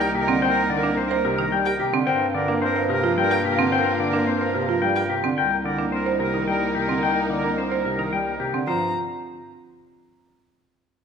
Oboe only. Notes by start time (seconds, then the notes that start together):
Already playing: A#4
0.21 A#4
0.50 A#4
0.78 A#4
1.07 A#4
1.36 A#4
1.65 A#4
2.07 A#4
2.36 A#4
2.65 A#4
2.93 A#4
3.23 A#4
3.52 A#4
3.80 A#4
4.09 A#4
4.38 A#4
4.66 A#4
4.95 A#4
5.37 A#4
5.66 A#4
5.95 A#4
6.23 A#4
6.52 A#4
6.81 A#4
7.10 A#4
7.38 A#4
7.67 A#4
7.96 A#4
8.25 A#4